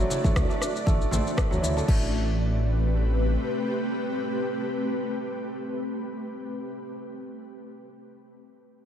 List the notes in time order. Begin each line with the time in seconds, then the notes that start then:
Already playing: A3 C4 D4 F#4 D5
0.00 F#3
0.10 E3, muted conga, high conga, shaker
0.24 A3, kick, low conga, shaker
0.36 D2, kick, cross-stick, high conga, shaker
0.49 A3, muted conga, shaker
0.61 D4, cross-stick, shaker
0.76 shaker
0.86 A1 A3, kick, muted conga, high conga, low conga, shaker
1.01 shaker
1.11 A1 C4, high conga, low conga, shaker
1.27 shaker
1.37 A1 A3, kick, cross-stick, muted conga, shaker
1.51 D2 F#3, low conga, shaker
1.63 D2 E3, high conga, shaker
1.77 A3, muted conga, shaker
1.88 A1 A3 C4 G4 B4, kick, crash